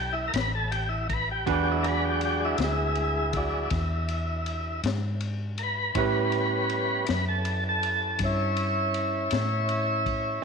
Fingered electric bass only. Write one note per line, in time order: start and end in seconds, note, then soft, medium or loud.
0.00 0.31 B1 medium
0.34 1.43 A1 medium
1.46 2.56 E2 medium
2.58 3.68 D2 medium
3.71 4.80 E2 medium
4.84 5.92 G#2 medium
5.95 7.04 A2 medium
7.09 8.17 F#2 medium
8.19 9.28 G2 medium
9.32 10.41 A2 medium